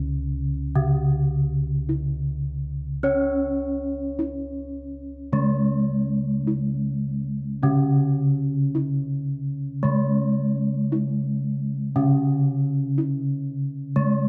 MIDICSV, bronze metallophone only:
0, 0, Header, 1, 2, 480
1, 0, Start_track
1, 0, Tempo, 1140684
1, 1280, Time_signature, 4, 2, 24, 8
1, 3677, Tempo, 1098901
1, 4157, Tempo, 1056338
1, 5117, Tempo, 1001669
1, 6237, End_track
2, 0, Start_track
2, 0, Title_t, "Bronze metallophone"
2, 0, Program_c, 0, 11
2, 0, Note_on_c, 0, 49, 73
2, 312, Note_off_c, 0, 49, 0
2, 318, Note_on_c, 0, 49, 72
2, 1276, Note_on_c, 0, 61, 65
2, 1280, Note_off_c, 0, 49, 0
2, 2240, Note_off_c, 0, 61, 0
2, 2243, Note_on_c, 0, 56, 65
2, 3205, Note_off_c, 0, 56, 0
2, 3212, Note_on_c, 0, 49, 68
2, 4153, Note_on_c, 0, 56, 62
2, 4163, Note_off_c, 0, 49, 0
2, 5116, Note_off_c, 0, 56, 0
2, 5121, Note_on_c, 0, 49, 69
2, 6080, Note_on_c, 0, 56, 63
2, 6084, Note_off_c, 0, 49, 0
2, 6237, Note_off_c, 0, 56, 0
2, 6237, End_track
0, 0, End_of_file